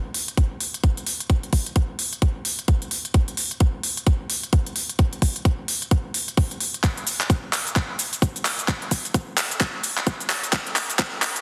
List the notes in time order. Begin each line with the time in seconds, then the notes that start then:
0.14 open hi-hat
0.28 closed hi-hat
0.37 kick, closed hi-hat
0.60 open hi-hat
0.74 closed hi-hat
0.84 kick, closed hi-hat
0.97 closed hi-hat
1.07 open hi-hat
1.20 closed hi-hat
1.30 kick, closed hi-hat
1.43 closed hi-hat
1.53 kick, open hi-hat
1.66 closed hi-hat
1.76 kick, closed hi-hat
1.99 open hi-hat
2.13 closed hi-hat
2.22 kick, closed hi-hat
2.45 open hi-hat
2.59 closed hi-hat
2.68 kick, closed hi-hat
2.82 closed hi-hat
2.91 open hi-hat
3.05 closed hi-hat
3.14 kick, closed hi-hat
3.28 closed hi-hat
3.37 open hi-hat
3.51 closed hi-hat
3.60 kick, closed hi-hat
3.83 open hi-hat
3.97 closed hi-hat
4.07 kick, closed hi-hat
4.30 open hi-hat
4.43 closed hi-hat
4.53 kick, closed hi-hat
4.66 closed hi-hat
4.76 open hi-hat
4.90 closed hi-hat
4.99 kick, closed hi-hat
5.13 closed hi-hat
5.22 kick, open hi-hat
5.36 closed hi-hat
5.45 kick, closed hi-hat
5.68 open hi-hat
5.82 closed hi-hat
5.91 kick, closed hi-hat
6.14 open hi-hat
6.28 closed hi-hat
6.37 kick, open hi-hat
6.51 closed hi-hat
6.60 open hi-hat
6.74 closed hi-hat
6.84 kick, clap, closed hi-hat, cabasa
6.97 closed hi-hat
7.07 open hi-hat, cabasa
7.21 clap, closed hi-hat, cabasa
7.30 kick, closed hi-hat, cabasa
7.53 clap, open hi-hat, cabasa
7.67 closed hi-hat, cabasa
7.76 kick, clap, closed hi-hat, cabasa
7.99 open hi-hat, cabasa
8.13 closed hi-hat, cabasa
8.22 kick, closed hi-hat, cabasa
8.36 closed hi-hat, cabasa
8.45 clap, open hi-hat, cabasa
8.59 closed hi-hat, cabasa
8.68 kick, clap, closed hi-hat, cabasa
8.82 closed hi-hat
8.91 kick, open hi-hat, cabasa
9.05 closed hi-hat, cabasa
9.14 kick, closed hi-hat, cabasa
9.37 clap, open hi-hat, cabasa
9.51 closed hi-hat, cabasa
9.61 kick, clap, closed hi-hat, cabasa
9.84 open hi-hat, cabasa
9.97 clap, closed hi-hat, cabasa
10.07 kick, closed hi-hat, cabasa
10.20 closed hi-hat, cabasa
10.30 clap, open hi-hat, cabasa
10.44 closed hi-hat, cabasa
10.53 kick, clap, closed hi-hat, cabasa
10.67 closed hi-hat
10.76 clap, open hi-hat, cabasa
10.90 closed hi-hat, cabasa
10.99 kick, clap, closed hi-hat, cabasa
11.22 clap, open hi-hat, cabasa
11.36 closed hi-hat, cabasa